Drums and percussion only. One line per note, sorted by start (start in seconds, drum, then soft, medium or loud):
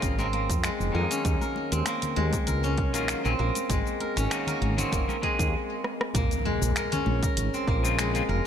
0.02 kick loud
0.02 closed hi-hat medium
0.02 cabasa soft
0.19 muted conga medium
0.19 cabasa soft
0.33 closed hi-hat soft
0.33 muted conga soft
0.49 kick medium
0.49 closed hi-hat soft
0.49 cabasa medium
0.64 finger snap medium
0.64 closed hi-hat medium
0.64 cabasa soft
0.81 cabasa soft
1.11 closed hi-hat soft
1.11 cabasa medium
1.25 kick loud
1.25 closed hi-hat medium
1.25 cabasa medium
1.41 muted conga soft
1.41 high conga medium
1.41 cabasa soft
1.56 muted conga medium
1.72 closed hi-hat soft
1.72 high conga medium
1.72 cabasa medium
1.86 finger snap medium
1.86 closed hi-hat medium
1.86 cabasa medium
2.02 closed hi-hat medium
2.02 low conga medium
2.02 cabasa soft
2.16 closed hi-hat soft
2.16 high conga medium
2.33 kick medium
2.33 closed hi-hat soft
2.33 low conga medium
2.33 cabasa medium
2.47 closed hi-hat medium
2.47 cabasa medium
2.64 muted conga medium
2.64 cabasa soft
2.78 kick loud
2.78 closed hi-hat soft
2.94 closed hi-hat soft
2.94 cabasa medium
3.08 finger snap medium
3.08 closed hi-hat medium
3.08 cabasa soft
3.26 cabasa soft
3.55 closed hi-hat soft
3.55 muted conga medium
3.55 cabasa medium
3.70 kick loud
3.70 closed hi-hat medium
3.70 cabasa medium
3.87 muted conga soft
3.87 high conga medium
3.87 cabasa soft
4.00 closed hi-hat soft
4.00 muted conga medium
4.16 finger snap soft
4.16 closed hi-hat soft
4.16 muted conga soft
4.16 high conga medium
4.16 cabasa medium
4.31 finger snap loud
4.31 closed hi-hat medium
4.31 cabasa soft
4.47 closed hi-hat soft
4.47 low conga medium
4.47 cabasa soft
4.61 closed hi-hat soft
4.61 high conga medium
4.78 closed hi-hat soft
4.78 low conga medium
4.78 cabasa medium
4.92 kick loud
4.92 closed hi-hat medium
4.92 cabasa medium
5.09 muted conga medium
5.09 cabasa soft
5.23 kick medium
5.23 closed hi-hat soft
5.23 muted conga soft
5.39 kick medium
5.39 closed hi-hat soft
5.39 cabasa medium
5.84 cross-stick medium
6.01 cross-stick medium
6.14 kick loud
6.14 closed hi-hat medium
6.14 high conga medium
6.14 cabasa medium
6.31 closed hi-hat soft
6.31 cabasa soft
6.62 cabasa medium
6.76 finger snap loud
6.76 closed hi-hat medium
6.76 cabasa medium
6.92 closed hi-hat soft
6.92 low conga medium
6.92 cabasa soft
7.06 muted conga medium
7.06 high conga medium
7.23 kick loud
7.23 closed hi-hat soft
7.23 low conga medium
7.23 cabasa medium
7.37 closed hi-hat medium
7.37 cabasa medium
7.54 cabasa soft
7.67 kick loud
7.67 muted conga medium
7.85 cabasa medium
7.99 finger snap loud
7.99 closed hi-hat medium
7.99 cabasa medium
8.15 closed hi-hat soft
8.15 cabasa soft